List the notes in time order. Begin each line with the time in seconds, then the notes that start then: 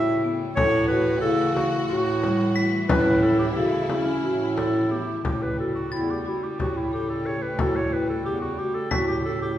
Already playing: A2 C#3 G3 A3 E4 E5
0.24 B3
0.56 A2 E3 F#4 A4 C#5, frame drum
0.88 F#4 B4, frame drum
1.21 C#3 E4 A4
1.55 E4 F#4, frame drum
1.89 A2 F#4, frame drum
2.23 G3, frame drum
2.56 E4 B6
2.88 A2 C#4 E4 B4, frame drum
3.22 E4 A4
3.39 G4
3.55 C#3 F#4 A4, frame drum
3.89 C#4 E4, frame drum
4.24 A2 F#4
4.57 E4 A4, frame drum
4.91 B3 G4
5.25 A2 C#3 G3 A3 G4, frame drum
5.42 B4
5.59 F#4 A4
5.75 F#4
5.92 E2 E4 A6
6.10 G4
6.26 E4 F#4
6.43 G4
6.59 A2 F#4 G4, frame drum
6.77 E4
6.93 G4 A4
7.10 A4
7.26 G4 C#5
7.42 B4
7.59 A2 F#4 A4, frame drum
7.76 C#5
7.93 E4 B4
8.10 A4
8.25 E2 G4
8.41 F#4
8.58 F#4 G4
8.74 A4
8.91 A2 F#4 B6, frame drum
9.08 G4
9.25 E4 A4
9.42 G4